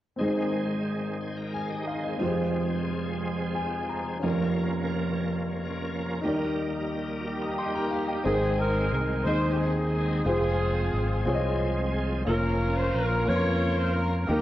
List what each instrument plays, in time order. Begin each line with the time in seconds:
0.16 upright piano G#1 G#2 C4 D#4, tonewheel organ D#3 G#3 C4 G#4
0.21 upright piano G#4 C5
1.21 tonewheel organ C5 G#5
1.37 tonewheel organ A#4 G5
1.54 tonewheel organ G#4 F5, upright piano G#5
1.70 tonewheel organ G4 D#5
1.87 tonewheel organ D#4 C5, upright piano F5
2.04 tonewheel organ C4 G#4, upright piano D#5
2.18 upright piano F1 F2 C4 F4, tonewheel organ F3 G#3 C4 G#4
2.22 upright piano G4 C5
2.29 upright piano G#4
3.55 upright piano G#5
3.89 upright piano A#5
4.19 upright piano F2 C#4 F4, tonewheel organ F3 A#3 C#4 G#4
4.23 upright piano F1 A#4 C#5
4.30 tonewheel organ A#4
6.21 upright piano D#2 D#3 D#4 G4, tonewheel organ G3 A#3 D#4 A#4
6.26 upright piano A#4 D5
6.35 upright piano D#5
7.20 alto saxophone F#4
7.25 horn section A#3 D#4 G4, alto saxophone G4
7.41 upright piano D#6
7.58 tonewheel organ G4 D#5, upright piano C6
7.74 tonewheel organ A#4 G5, upright piano A#5
7.91 tonewheel organ F5, upright piano F5
8.08 tonewheel organ G4 D#5, upright piano G5
8.24 fingered electric bass G#1, upright piano G#2 C4 D#4 G#4 A#4, tonewheel organ D#3 G#3 C4 G#4, horn section C4 D#4 G#4, alto saxophone G#4
8.34 upright piano C5
8.59 horn section D#4 A#4, alto saxophone A#4
8.92 fingered electric bass C2, alto saxophone A#4
9.24 fingered electric bass D#2, upright piano C4 D#4 G#4 D#5, horn section C5, alto saxophone C5
9.52 alto saxophone G4
9.57 horn section C4 D#4 G#4, alto saxophone G#4
10.25 fingered electric bass F1, tonewheel organ F3 G#3 C4 G#4, upright piano C4 F4 G#4 C5, horn section C4 F4 G#4, alto saxophone G#4
10.94 fingered electric bass G#1
11.25 fingered electric bass C2, upright piano C4 F4 G#4 C#5
11.35 upright piano D#5
12.25 fingered electric bass F1, tonewheel organ F3 A#3 C#4 A#4, upright piano A#3 C#4 F4 A#4, horn section C#4 F4 A#4, alto saxophone A#4
12.77 alto saxophone C5, horn section C5
12.94 fingered electric bass A#1, alto saxophone A#4, horn section A#4
13.26 fingered electric bass F2, upright piano A#3 C#4 F4 B4, horn section F4 A#4 C#5, alto saxophone C#5
13.36 upright piano C6
13.78 alto saxophone C5, horn section C5
13.93 alto saxophone A#4, horn section A#4
14.27 fingered electric bass D#2, upright piano D#3 A#3 D#4 G4 A#4, tonewheel organ F#3 A#3 D#4 A#4, horn section A#3 D#4 G4, alto saxophone G4
14.35 tonewheel organ G3